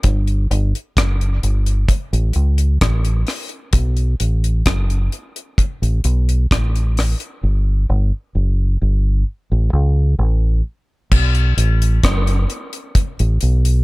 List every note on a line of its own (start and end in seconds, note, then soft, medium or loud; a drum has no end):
0.03 0.46 G1 loud
0.03 kick loud
0.03 closed hi-hat medium
0.27 closed hi-hat soft
0.51 0.72 G1 loud
0.51 closed hi-hat medium
0.75 closed hi-hat soft
0.97 1.38 F#1 medium
0.97 kick loud
0.97 cross-stick loud
0.97 closed hi-hat medium
1.21 closed hi-hat soft
1.43 1.84 G1 medium
1.43 closed hi-hat medium
1.66 closed hi-hat soft
1.89 kick loud
1.89 closed hi-hat medium
2.13 2.33 A1 medium
2.13 closed hi-hat soft
2.33 2.77 C#2 medium
2.33 closed hi-hat medium
2.58 closed hi-hat soft
2.81 3.23 A1 medium
2.81 kick loud
2.81 cross-stick loud
2.81 closed hi-hat medium
3.05 closed hi-hat soft
3.27 cross-stick medium
3.27 open hi-hat medium
3.49 closed hi-hat soft
3.73 4.15 B1 loud
3.73 kick loud
3.73 closed hi-hat medium
3.97 closed hi-hat soft
4.20 4.61 A1 medium
4.20 closed hi-hat medium
4.44 closed hi-hat medium
4.66 5.07 F#1 medium
4.66 kick loud
4.66 cross-stick loud
4.66 closed hi-hat loud
4.90 closed hi-hat soft
5.12 closed hi-hat medium
5.36 closed hi-hat medium
5.58 kick loud
5.58 closed hi-hat medium
5.82 6.02 A1 medium
5.82 closed hi-hat medium
6.04 6.46 B1 medium
6.04 closed hi-hat medium
6.29 closed hi-hat soft
6.51 7.14 A1 medium
6.51 kick loud
6.51 cross-stick loud
6.51 closed hi-hat medium
6.76 closed hi-hat soft
6.97 cross-stick medium
6.97 open hi-hat medium
7.20 closed hi-hat soft
7.43 7.84 G1 medium
7.89 8.10 G1 loud
8.35 8.76 F#1 medium
8.82 9.23 G1 medium
9.52 9.71 A1 medium
9.73 10.14 C#2 loud
10.19 10.60 A1 medium
11.12 11.53 B1 loud
11.12 kick medium
11.12 crash medium
11.35 closed hi-hat soft
11.57 11.99 A1 medium
11.57 closed hi-hat medium
11.82 closed hi-hat medium
12.03 12.45 F#1 loud
12.03 kick loud
12.03 cross-stick loud
12.03 closed hi-hat medium
12.27 closed hi-hat medium
12.50 closed hi-hat medium
12.73 closed hi-hat medium
12.95 kick loud
12.95 closed hi-hat loud
13.19 13.40 A1 medium
13.19 closed hi-hat soft
13.41 13.83 B1 medium
13.41 closed hi-hat medium
13.65 closed hi-hat medium